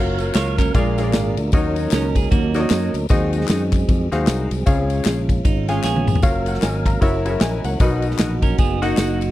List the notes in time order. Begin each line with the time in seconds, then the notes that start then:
Already playing: F#1 F#3 A#3 C#4 F4 F#4 A#4 C#5 F5
0.18 ride, tambourine
0.34 C#2 F4 C#5, snare, clap, ride, tambourine
0.58 C#4 A#4, kick, clap, ride, tambourine
0.74 A#1 A#2 G#3 A#3 D4 F4 G#4 A#4 D5 F5, kick, ride, tambourine
0.98 F4 G#4 A#4 C#5 F5, snare, ride, tambourine
1.03 D5
1.13 G#1, snare, clap, ride, tambourine
1.37 D2, ride, tambourine
1.52 D#2 D#3 F#3 A#3 C#4 D#4 F#4 A#4 C#5 D#5, kick, ride, tambourine
1.76 ride, tambourine
1.91 C#2 C#4 A#4, snare, clap, ride, tambourine
2.15 G#4, kick, ride, tambourine
2.31 D#2 A#3 F#4, kick, ride, tambourine
2.54 D#4 F#4 A#4 C#5 D5, snare, ride, tambourine
2.60 D#5
2.70 F#2, snare, clap, ride, tambourine
2.94 D2, ride, tambourine
3.09 D#2 D#3 F#3 G#3 C4 D#4 F#4 G#4 C5 D#5, kick, ride, tambourine
3.33 ride, tambourine
3.41 snare
3.48 F#2, snare, clap, ride, tambourine
3.72 kick, clap, ride, tambourine
3.89 F2, kick, ride, tambourine
4.12 D#2 D#4 F#4 G#4 C5 F5, snare, ride, tambourine
4.27 C2 A#4, snare, clap, ride, tambourine
4.51 C2 C4 G#4, ride, tambourine
4.66 C#2 C#3 G#3 C#4 F4 G#4 C#5 F5, kick, ride, tambourine
4.90 ride, tambourine
5.04 A#1, snare, clap, ride, tambourine
5.29 kick, ride, tambourine
5.45 G#1 D#4, kick, ride, tambourine
5.68 G#3 C#4 F4 G#4 C#5 G#5, snare, ride, tambourine
5.83 A#1 B3 G#4, snare, clap, tambourine
5.96 high tom
6.07 mid tom, tambourine
6.15 floor tom
6.22 F#1 F#3 A#3 C#4 F4 F#4 G#4 A#4 C#5 F5, kick, ride, tambourine
6.28 A#4
6.46 C#5 F#5, ride, tambourine
6.54 snare
6.62 G#1 D#5 G#5, snare, clap, ride, tambourine
6.86 F5 A#5, kick, clap, ride, tambourine
7.01 F#1 F#3 A#3 C#4 E4 F#4 A#4 C#5 E5, kick, ride, tambourine
7.25 E4 F#4 G#4 C#5 E5, ride, tambourine
7.30 A#4
7.41 A#1 D#5 G#5, snare, clap, ride, tambourine
7.64 C#2 C#5 F#5, ride, tambourine
7.80 B1 B2 F#3 D#4 F#4 A#4 B4 D#5, kick, ride, tambourine
8.02 ride, tambourine
8.11 snare
8.18 A#1, snare, clap, ride, tambourine
8.42 C#4 A#4, kick, ride, tambourine
8.58 F#1 B3 G#4, kick, ride, tambourine
8.82 A#3 D#4 F#4 A#4 D#5 F#5, snare, ride, tambourine
8.97 F#1, snare, clap, ride, tambourine
9.21 ride, tambourine